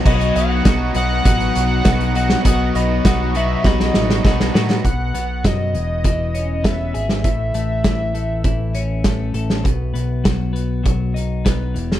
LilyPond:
<<
  \new Staff \with { instrumentName = "Glockenspiel" } { \time 4/4 \key b \mixolydian \tempo 4 = 100 b''8 dis'''4 dis'''2~ dis'''8 | dis'''8 b''8 dis'''8 cis'''8 b''4. r8 | r1 | r1 |
r1 | }
  \new Staff \with { instrumentName = "Analog synth lead" } { \time 4/4 \key b \mixolydian dis''8 fis''4 fis''2~ fis''8 | fis''8 dis''8 fis''8 e''8 dis''4. r8 | fis''4 dis''2 e''4 | e''2.~ e''8 r8 |
r1 | }
  \new Staff \with { instrumentName = "Clean electric guitar" } { \time 4/4 \key b \mixolydian <b, fis b dis' fis'>4 <b, fis b dis' fis'>8 <b, fis b dis' fis'>8 <b, fis b dis' fis'>4 <b, fis b dis' fis'>8 <b, fis b dis' fis'>8 | <b, fis b dis' fis'>4 <b, fis b dis' fis'>8 <b, fis b dis' fis'>8 <b, fis b dis' fis'>4 <b, fis b dis' fis'>8 <b, fis b dis' fis'>8 | b,8 b8 fis8 e,8 e8 cis'8 b8 gis'8 | a,8 a8 e8 a8 e8 cis'8 a8 a'8 |
b,8 b8 fis8 b8 fis8 dis'8 b8 e,8 | }
  \new Staff \with { instrumentName = "Overdriven electric guitar" } { \time 4/4 \key b \mixolydian <b, fis b dis' fis'>4 <b, fis b dis' fis'>8 <b, fis b dis' fis'>8 <b, fis b dis' fis'>4 <b, fis b dis' fis'>8 <b, fis b dis' fis'>8 | <b, fis b dis' fis'>4 <b, fis b dis' fis'>8 <b, fis b dis' fis'>8 <b, fis b dis' fis'>4 <b, fis b dis' fis'>8 <b, fis b dis' fis'>8 | r1 | r1 |
r1 | }
  \new Staff \with { instrumentName = "Picked electric bass" } { \clef bass \time 4/4 \key b \mixolydian b,,8 b,,8 b,,8 b,,8 a,,8 b,,8 b,,4 | b,,8 b,,8 b,,4 b,,8 a,,8 b,,8 a,8 | b,,8 b,,8 fis,8 e,,8 e,,4 e,,8 gis,,8 | a,,8 a,,8 a,,4 a,,4 a,,8 a,,8 |
b,,8 b,,8 b,,4 b,,4 b,,8 e,,8 | }
  \new DrumStaff \with { instrumentName = "Drums" } \drummode { \time 4/4 <cymc bd>16 hh16 hh8 <hh bd sn>8 hh8 <hh bd>16 hh16 hh8 <hh bd sn>16 hh16 hh16 sn16 | <hh bd>8 hh8 <hh bd sn>8 hh8 <bd sn>16 sn16 sn16 sn16 <bd sn>16 sn16 sn16 sn16 | <hh bd>8 hh8 <hh bd sn>8 hh8 <hh bd>8 hh8 <hh bd sn>8 hh16 sn16 | <hh bd>8 hh8 <hh bd sn>8 hh8 <hh bd>8 hh8 <hh bd sn>8 hh16 sn16 |
<hh bd>8 hh8 <hh bd sn>8 hh8 <hh bd>8 hh8 <hh bd sn>8 hh16 sn16 | }
>>